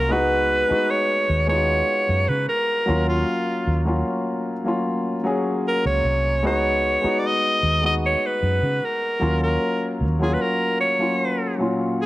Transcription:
0.00 0.12 C2 medium
0.00 0.14 F#3 medium
0.00 0.13 A#3 medium
0.00 0.13 C#4 medium
0.00 0.14 F4 medium
0.00 0.13 F#4 medium
0.00 0.13 A#4 medium
0.09 0.63 C#2 loud
0.09 0.58 G#3 medium
0.09 0.59 B3 medium
0.09 0.60 D#4 medium
0.09 0.60 F#4 medium
0.09 0.92 B4 loud
0.68 1.34 G#3 medium
0.68 1.34 B3 medium
0.68 1.35 D#4 medium
0.68 1.36 F#4 medium
0.68 muted fingered electric bass stroke soft
0.90 1.48 C#5 medium
1.30 1.81 D#2 medium
1.47 2.77 G#3 medium
1.47 2.78 B3 medium
1.47 2.78 D#4 medium
1.47 1.57 F4 medium
1.47 2.30 C#5 loud
1.57 2.82 F#4 medium
2.09 2.26 F#2 medium
2.28 2.46 C#3 medium
2.28 2.48 B4 medium
2.49 3.04 A#4 medium
2.86 3.23 D#2 medium
2.86 3.68 F#3 medium
2.86 3.69 A#3 medium
2.86 3.69 C#4 medium
2.86 3.70 F4 medium
3.08 3.84 F4 medium
3.67 4.02 D#2 medium
3.85 4.51 F#3 medium
3.85 4.51 A#3 medium
3.85 4.52 C#4 medium
3.85 4.53 F4 medium
4.64 5.14 F#3 medium
4.64 5.15 A#3 medium
4.64 5.15 C#4 medium
4.64 5.16 F4 medium
5.24 6.22 F#3 medium
5.24 6.22 A#3 medium
5.24 6.23 C#4 medium
5.24 6.23 G#4 medium
5.67 5.85 A#4 medium
5.86 6.03 C#2 medium
5.86 6.41 C#5 medium
6.05 6.45 C2 medium
6.43 6.96 C#2 medium
6.43 6.92 G#3 medium
6.43 6.93 B3 medium
6.43 6.93 D#4 medium
6.43 6.94 F#4 medium
6.43 7.21 C#5 medium
7.01 7.67 G#3 medium
7.01 7.68 B3 medium
7.01 7.69 D#4 medium
7.01 7.69 F#4 medium
7.01 muted fingered electric bass stroke soft
7.19 7.28 D5 medium
7.27 7.85 D#5 loud
7.63 8.14 D#2 medium
7.82 9.11 G#3 medium
7.82 9.12 B3 medium
7.82 9.13 D#4 medium
7.82 9.13 F#4 medium
7.86 7.94 D#5 loud
8.06 8.27 C#5 medium
8.26 8.86 B4 medium
8.43 8.60 F#2 medium
8.63 8.80 C#3 medium
8.85 9.42 A#4 medium
9.20 9.56 D#2 medium
9.20 10.01 F#3 medium
9.20 10.02 A#3 medium
9.20 10.03 C#4 medium
9.20 10.03 F4 medium
9.43 9.91 A#4 medium
10.01 10.35 D#2 medium
10.19 10.85 F#3 medium
10.19 10.85 A#3 medium
10.19 10.86 C#4 medium
10.19 10.86 F4 medium
10.19 10.35 G#4 medium
10.34 10.43 B4 medium
10.41 10.80 A#4 medium
10.80 11.56 C#5 medium
10.99 11.48 F#3 medium
10.99 11.49 A#3 medium
10.99 11.49 C#4 medium
10.99 11.50 F4 medium
11.58 12.06 A#2 medium
11.58 12.06 F#3 medium
11.58 12.06 C#4 medium
11.58 12.06 F4 medium
12.01 12.06 G#4 medium

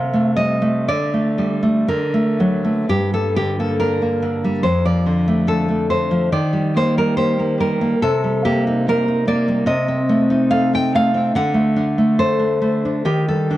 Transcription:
0.00 0.86 C3 medium
0.00 0.36 F5 loud
0.13 0.60 A3 soft
0.36 0.89 G3 medium
0.36 0.86 D#5 medium
0.62 0.88 A3 medium
0.88 1.86 D3 medium
0.88 2.34 D5 medium
1.14 1.61 A3 soft
1.38 1.88 G3 medium
1.63 1.88 A3 medium
1.88 2.84 D3 medium
1.88 2.83 A#4 medium
2.14 2.63 A3 medium
2.40 2.88 F#3 medium
2.64 2.88 A3 soft
2.89 4.61 G2 medium
2.89 3.12 G4 medium
3.14 3.59 G3 soft
3.14 3.35 A4 medium
3.36 4.21 D3 soft
3.36 3.58 G4 medium
3.59 4.01 A#3 soft
3.59 3.79 A4 medium
3.80 4.65 D4 medium
3.80 4.61 A#4 medium
4.02 4.65 A#3 soft
4.22 4.65 D3 soft
4.45 4.65 G3 soft
4.63 6.30 F2 medium
4.63 4.85 C5 medium
4.85 6.10 F3 soft
4.85 5.47 D5 medium
5.06 5.90 D3 medium
5.28 5.67 A3 medium
5.47 6.33 D4 medium
5.47 5.90 A4 medium
5.69 6.33 A3 soft
5.90 6.34 D3 soft
5.90 6.32 C5 medium
6.11 6.32 F3 soft
6.32 7.94 D#3 medium
6.32 6.74 D5 medium
6.53 6.96 G3 soft
6.76 7.38 A#3 soft
6.76 6.97 C5 medium
6.97 7.59 G3 medium
6.97 7.16 A#4 medium
7.17 7.99 G4 medium
7.17 7.56 C5 medium
7.40 7.80 A#3 soft
7.60 8.00 G3 medium
7.60 7.99 A#4 medium
7.81 8.01 A#3 medium
8.02 9.65 C3 medium
8.02 8.42 A4 loud
8.24 9.47 G3 soft
8.45 8.87 A#3 medium
8.45 8.67 G4 medium
8.67 9.07 D#4 medium
8.88 9.26 A#3 medium
8.88 9.26 A#4 medium
9.08 9.68 D#4 soft
9.27 9.68 A#3 medium
9.27 9.66 D5 medium
9.48 9.68 G3 medium
9.66 11.30 C3 medium
9.66 10.47 D#5 medium
9.88 11.13 C4 soft
10.09 10.94 A3 medium
10.30 10.72 D#4 medium
10.51 11.35 A4 medium
10.51 10.72 F5 loud
10.73 11.35 D#4 medium
10.73 10.94 G5 medium
10.95 11.36 A3 soft
10.95 11.34 F5 loud
11.14 11.35 C4 medium
11.35 13.02 D3 medium
11.35 12.17 F#5 loud
11.54 11.97 A3 soft
11.77 12.38 D4 medium
11.98 12.60 A3 medium
12.19 13.05 A4 medium
12.19 13.02 C5 medium
12.39 12.84 D4 soft
12.62 13.05 A3 soft
12.85 13.05 D4 soft
13.05 13.57 D#3 medium
13.05 13.27 G4 medium
13.29 13.57 G3 soft
13.29 13.57 A4 medium
13.51 13.57 D4 soft

